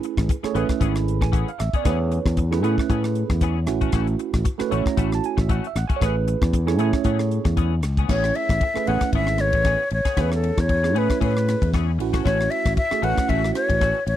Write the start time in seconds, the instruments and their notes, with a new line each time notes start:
Already playing: tine electric piano A3 C#4 E4 G#4 B4
0.03 muted clean electric guitar stroke, closed hi-hat
0.17 fingered electric bass A1, kick, cross-stick, closed hi-hat
0.29 muted clean electric guitar stroke, kick, closed hi-hat
0.43 tine electric piano A3 C#4 E4 G#4 C#5, muted clean electric guitar stroke, muted fingered electric bass stroke, cross-stick, closed hi-hat
0.54 fingered electric bass A1, clean electric guitar E3 B3 C#4 G#4, tine electric piano A3 C#4 E4 G#4 B4, closed hi-hat
0.69 muted fingered electric bass stroke, muted clean electric guitar stroke, kick, cross-stick, closed hi-hat
0.80 fingered electric bass G#1, clean electric guitar E3 B3 C#4 G#4, tine electric piano B5, kick, closed hi-hat
0.95 muted clean electric guitar stroke, cross-stick, closed hi-hat
1.08 closed hi-hat
1.21 fingered electric bass A1, tine electric piano G#5, muted clean electric guitar stroke, kick, cross-stick
1.32 clean electric guitar E3 B3 C#4 G#4, tine electric piano F#5, kick, closed hi-hat
1.48 tine electric piano F5, closed hi-hat
1.58 fingered electric bass A1, tine electric piano E5, muted clean electric guitar stroke, cross-stick, closed hi-hat
1.73 clean electric guitar B3 C#4 G#4, tine electric piano D5, muted fingered electric bass stroke, kick, closed hi-hat
1.84 fingered electric bass E2, clean electric guitar E3 B3 C#4 G#4, tine electric piano A3 C#4 E4 G#4 B4, kick, cross-stick, closed hi-hat
1.89 tine electric piano C#5
2.00 muted clean electric guitar stroke
2.11 muted clean electric guitar stroke, closed hi-hat
2.25 fingered electric bass E2, kick, cross-stick
2.37 muted clean electric guitar stroke, kick, closed hi-hat
2.51 tine electric piano A3 C#4 E4 G#4 B4, muted clean electric guitar stroke, cross-stick
2.62 fingered electric bass A2, clean electric guitar E3 B3 C#4 G#4, tine electric piano A3 C#4 E4 G#4 B4, closed hi-hat
2.78 kick, cross-stick
2.90 fingered electric bass A2, clean electric guitar E3 B3 C#4 G#4, kick, closed hi-hat
3.04 muted clean electric guitar stroke, cross-stick, closed hi-hat
3.15 closed hi-hat
3.30 fingered electric bass E2, muted clean electric guitar stroke, kick, cross-stick
3.41 clean electric guitar E3 B3 C#4 G#4, tine electric piano C#5, kick, closed hi-hat
3.66 fingered electric bass A1, tine electric piano A3 C#4 E4 F#4 B4, muted clean electric guitar stroke, cross-stick, closed hi-hat
3.81 clean electric guitar A3 C#4 F#4, kick, closed hi-hat
3.92 fingered electric bass A1, clean electric guitar E3 A3 C#4 F#4, kick, cross-stick, closed hi-hat
4.07 muted clean electric guitar stroke, closed hi-hat
4.19 muted clean electric guitar stroke, closed hi-hat
4.33 fingered electric bass A1, kick, cross-stick, closed hi-hat
4.45 muted clean electric guitar stroke, kick, closed hi-hat
4.58 tine electric piano A3 C#4 E4 F#4 B4, muted clean electric guitar stroke, muted fingered electric bass stroke, cross-stick, closed hi-hat
4.70 fingered electric bass A1, clean electric guitar E3 A3 C#4 F#4, tine electric piano A3 C#4 E4 F#4 C#5, closed hi-hat
4.85 tine electric piano A#5, muted clean electric guitar stroke, muted fingered electric bass stroke, kick, cross-stick, closed hi-hat
4.97 fingered electric bass A1, clean electric guitar E3 A3 C#4 F#4, tine electric piano B5, kick, closed hi-hat
5.12 tine electric piano A5, muted clean electric guitar stroke, cross-stick, closed hi-hat
5.24 tine electric piano G#5, closed hi-hat
5.37 fingered electric bass A1, muted clean electric guitar stroke, kick, cross-stick
5.41 tine electric piano E5
5.49 clean electric guitar E3 A3 C#4 F#4, tine electric piano F#5, kick, closed hi-hat
5.64 tine electric piano E5, closed hi-hat
5.75 fingered electric bass A1, tine electric piano F#5, muted clean electric guitar stroke, cross-stick, closed hi-hat
5.88 clean electric guitar A3 C#4 F#4, tine electric piano G#5, muted fingered electric bass stroke, kick, closed hi-hat
5.96 tine electric piano A3 C#5
6.01 fingered electric bass A1, clean electric guitar E3 B3 C#4 G#4, tine electric piano C#4 E4 G#4 B4, kick, cross-stick, closed hi-hat
6.06 tine electric piano B4
6.28 muted clean electric guitar stroke, closed hi-hat
6.42 fingered electric bass E2, kick, cross-stick
6.53 muted clean electric guitar stroke, kick, closed hi-hat
6.66 tine electric piano A3 C#4 E4 G#4 C#5, muted clean electric guitar stroke, cross-stick
6.78 fingered electric bass A2, clean electric guitar E3 B3 C#4 G#4, tine electric piano A3 C#4 E4 G#4 C#5, closed hi-hat
6.93 kick, cross-stick
7.04 fingered electric bass A2, clean electric guitar E3 B3 C#4 G#4, kick, closed hi-hat
7.19 muted clean electric guitar stroke, cross-stick, closed hi-hat
7.31 closed hi-hat
7.45 fingered electric bass E2, muted clean electric guitar stroke, kick, cross-stick
7.57 clean electric guitar E3 B3 C#4 G#4, kick, closed hi-hat
7.83 fingered electric bass C#2, muted clean electric guitar stroke, cross-stick, closed hi-hat
7.97 clean electric guitar B3 C#4 G#4, kick, closed hi-hat
8.08 fingered electric bass A1, clean electric guitar E3 B3 C#4 G#4, tine electric piano A3 C#4 E4 G#4 B4, flute C#5, kick, cross-stick, crash
8.24 muted clean electric guitar stroke, cross-stick
8.35 flute E5, muted clean electric guitar stroke, ride
8.49 fingered electric bass A1, kick, cross-stick, ride
8.61 muted clean electric guitar stroke, kick, ride
8.74 tine electric piano A3 C#4 E4 G#4 B4, muted fingered electric bass stroke, muted clean electric guitar stroke, cross-stick
8.86 fingered electric bass A1, clean electric guitar E3 B3 C#4 G#4, tine electric piano A3 C#4 E4 G#4 B4, flute F#5, ride
9.01 muted fingered electric bass stroke, muted clean electric guitar stroke, kick, cross-stick, ride
9.13 fingered electric bass G#1, clean electric guitar E3 B3 C#4 G#4, flute E5, kick, ride
9.27 muted clean electric guitar stroke, cross-stick
9.38 flute C#5, cross-stick, ride
9.53 fingered electric bass A1, muted clean electric guitar stroke, kick, ride
9.65 clean electric guitar E3 B3 C#4 G#4, kick, cross-stick, ride
9.90 fingered electric bass A1, flute C#5, muted clean electric guitar stroke, ride
10.05 clean electric guitar B3 C#4 G#4, muted fingered electric bass stroke, kick, cross-stick, ride
10.17 fingered electric bass E2, clean electric guitar E3 B3 C#4 G#4, tine electric piano A3 C#4 E4 G#4 C#5, kick, cross-stick, ride
10.21 flute B4
10.32 flute A4, cross-stick
10.43 muted clean electric guitar stroke, ride
10.57 fingered electric bass E2, flute C#5, kick, cross-stick, ride
10.69 muted clean electric guitar stroke, kick, ride
10.83 tine electric piano A3 C#4 E4 G#4 C#5, muted clean electric guitar stroke, cross-stick
10.95 fingered electric bass A2, clean electric guitar E3 B3 C#4 G#4, tine electric piano A3 C#4 E4 G#4 C#5, flute B4, ride
11.10 muted clean electric guitar stroke, kick, cross-stick, ride
11.21 fingered electric bass A2, clean electric guitar E3 B3 C#4 G#4, flute B4, kick, ride
11.35 muted clean electric guitar stroke, cross-stick
11.48 cross-stick, ride
11.62 fingered electric bass E2, muted clean electric guitar stroke, kick, ride
11.74 clean electric guitar E3 B3 C#4 G#4, kick, cross-stick, ride
11.99 fingered electric bass A1, tine electric piano A3 C#4 E4 F#4 B4, muted clean electric guitar stroke, ride
12.13 clean electric guitar A3 C#4 F#4, kick, cross-stick, ride
12.24 fingered electric bass A1, clean electric guitar E3 A3 C#4 F#4, flute C#5, kick, cross-stick, ride
12.39 muted clean electric guitar stroke, cross-stick
12.51 flute E5, muted clean electric guitar stroke, ride
12.65 fingered electric bass A1, kick, cross-stick, ride
12.77 flute E5, muted clean electric guitar stroke, kick, ride
12.91 tine electric piano A3 C#4 E4 F#4 G#4, muted clean electric guitar stroke, muted fingered electric bass stroke, cross-stick
13.02 fingered electric bass A1, clean electric guitar E3 A3 C#4 F#4, tine electric piano A3 C#4 E4 F#4 B4, flute F#5, ride
13.17 muted fingered electric bass stroke, muted clean electric guitar stroke, kick, cross-stick, ride
13.28 fingered electric bass A1, clean electric guitar E3 A3 C#4 F#4, flute E5, kick, ride
13.44 cross-stick
13.55 flute C#5, cross-stick, ride
13.69 fingered electric bass A1, muted clean electric guitar stroke, kick, ride
13.81 clean electric guitar E3 A3 C#4 F#4, kick, cross-stick, ride
14.07 fingered electric bass A1, flute C#5, muted clean electric guitar stroke, ride